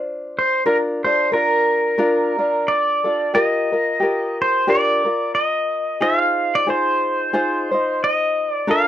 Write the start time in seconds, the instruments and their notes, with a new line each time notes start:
Already playing: ukulele D4 F4 C5
0.39 pedal steel guitar C5
0.66 ukulele D4 F4 A#4, pedal steel guitar A#4
1.04 ukulele D4 F4 A4, pedal steel guitar C5
1.32 ukulele D4 F4 A#4, pedal steel guitar A#4
1.98 ukulele D4 F4 A#4
2.39 ukulele D4 F4
2.68 pedal steel guitar D5
3.04 ukulele D4 F4 A4
3.34 ukulele F4 G4 A#4, pedal steel guitar D#5
3.72 ukulele F4 A#4
4.00 ukulele F4 G4 A#4
4.42 pedal steel guitar C5
4.67 ukulele D4 F4 G4 A#4, pedal steel guitar D5
5.05 ukulele F4 A#4
5.35 pedal steel guitar D#5
6.01 ukulele D#4 F4 G#4 C5, pedal steel guitar F5
6.55 pedal steel guitar D5
6.67 ukulele D#4 F4 G#4 C5, pedal steel guitar C5
7.33 ukulele D#4 F4 G#4 C5
7.71 ukulele D#4 F4 C5
8.04 pedal steel guitar D#5
8.51 pedal steel guitar D5
8.67 ukulele D4 F4 A4 A#4, pedal steel guitar F5